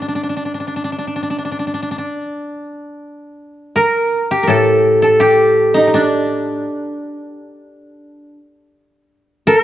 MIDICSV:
0, 0, Header, 1, 4, 480
1, 0, Start_track
1, 0, Tempo, 742574
1, 36, Time_signature, 4, 2, 24, 8
1, 2436, Tempo, 721154
1, 3876, Tempo, 707547
1, 6388, End_track
2, 0, Start_track
2, 0, Title_t, "Koto"
2, 0, Program_c, 0, 107
2, 0, Note_on_c, 0, 62, 59
2, 1454, Note_off_c, 0, 62, 0
2, 2435, Note_on_c, 0, 70, 74
2, 2874, Note_off_c, 0, 70, 0
2, 2877, Note_on_c, 0, 70, 56
2, 2922, Note_on_c, 0, 69, 81
2, 2962, Note_off_c, 0, 70, 0
2, 3279, Note_off_c, 0, 69, 0
2, 3282, Note_on_c, 0, 69, 69
2, 3395, Note_on_c, 0, 67, 71
2, 3765, Note_on_c, 0, 63, 62
2, 3835, Note_off_c, 0, 63, 0
2, 3838, Note_on_c, 0, 63, 49
2, 3886, Note_on_c, 0, 62, 67
2, 3927, Note_off_c, 0, 63, 0
2, 4562, Note_off_c, 0, 69, 0
2, 4769, Note_off_c, 0, 67, 0
2, 5532, Note_off_c, 0, 62, 0
2, 6276, Note_on_c, 0, 70, 79
2, 6388, Note_off_c, 0, 70, 0
2, 6388, End_track
3, 0, Start_track
3, 0, Title_t, "Koto"
3, 0, Program_c, 1, 107
3, 12, Note_on_c, 1, 62, 38
3, 52, Note_off_c, 1, 62, 0
3, 54, Note_on_c, 1, 62, 41
3, 96, Note_off_c, 1, 62, 0
3, 98, Note_on_c, 1, 62, 34
3, 149, Note_off_c, 1, 62, 0
3, 151, Note_on_c, 1, 62, 40
3, 186, Note_off_c, 1, 62, 0
3, 189, Note_on_c, 1, 62, 35
3, 234, Note_off_c, 1, 62, 0
3, 236, Note_on_c, 1, 62, 40
3, 289, Note_off_c, 1, 62, 0
3, 292, Note_on_c, 1, 62, 34
3, 348, Note_off_c, 1, 62, 0
3, 350, Note_on_c, 1, 62, 39
3, 385, Note_off_c, 1, 62, 0
3, 388, Note_on_c, 1, 62, 36
3, 432, Note_off_c, 1, 62, 0
3, 435, Note_on_c, 1, 62, 42
3, 489, Note_off_c, 1, 62, 0
3, 492, Note_on_c, 1, 62, 38
3, 541, Note_off_c, 1, 62, 0
3, 544, Note_on_c, 1, 62, 39
3, 593, Note_off_c, 1, 62, 0
3, 596, Note_on_c, 1, 62, 37
3, 634, Note_off_c, 1, 62, 0
3, 637, Note_on_c, 1, 62, 39
3, 691, Note_off_c, 1, 62, 0
3, 694, Note_on_c, 1, 62, 33
3, 746, Note_off_c, 1, 62, 0
3, 748, Note_on_c, 1, 62, 41
3, 790, Note_off_c, 1, 62, 0
3, 793, Note_on_c, 1, 62, 37
3, 838, Note_off_c, 1, 62, 0
3, 841, Note_on_c, 1, 62, 41
3, 892, Note_off_c, 1, 62, 0
3, 895, Note_on_c, 1, 62, 36
3, 934, Note_off_c, 1, 62, 0
3, 936, Note_on_c, 1, 62, 45
3, 977, Note_off_c, 1, 62, 0
3, 980, Note_on_c, 1, 62, 40
3, 1026, Note_off_c, 1, 62, 0
3, 1028, Note_on_c, 1, 62, 38
3, 1077, Note_off_c, 1, 62, 0
3, 1079, Note_on_c, 1, 62, 36
3, 1122, Note_off_c, 1, 62, 0
3, 1124, Note_on_c, 1, 62, 43
3, 1177, Note_off_c, 1, 62, 0
3, 1179, Note_on_c, 1, 62, 42
3, 1233, Note_off_c, 1, 62, 0
3, 1235, Note_on_c, 1, 62, 42
3, 1278, Note_off_c, 1, 62, 0
3, 1281, Note_on_c, 1, 62, 42
3, 2428, Note_on_c, 1, 70, 92
3, 2796, Note_on_c, 1, 67, 79
3, 2861, Note_off_c, 1, 62, 0
3, 2905, Note_on_c, 1, 69, 85
3, 2945, Note_off_c, 1, 70, 0
3, 3267, Note_off_c, 1, 69, 0
3, 3270, Note_on_c, 1, 69, 71
3, 3385, Note_off_c, 1, 67, 0
3, 3387, Note_on_c, 1, 67, 88
3, 3749, Note_on_c, 1, 63, 72
3, 3880, Note_on_c, 1, 62, 74
3, 3920, Note_off_c, 1, 63, 0
3, 4549, Note_off_c, 1, 69, 0
3, 4762, Note_off_c, 1, 67, 0
3, 5526, Note_off_c, 1, 62, 0
3, 6276, Note_on_c, 1, 69, 107
3, 6357, Note_off_c, 1, 69, 0
3, 6357, Note_on_c, 1, 70, 107
3, 6388, Note_off_c, 1, 70, 0
3, 6388, End_track
4, 0, Start_track
4, 0, Title_t, "Koto"
4, 0, Program_c, 2, 107
4, 2909, Note_on_c, 2, 45, 56
4, 4353, Note_off_c, 2, 45, 0
4, 6388, End_track
0, 0, End_of_file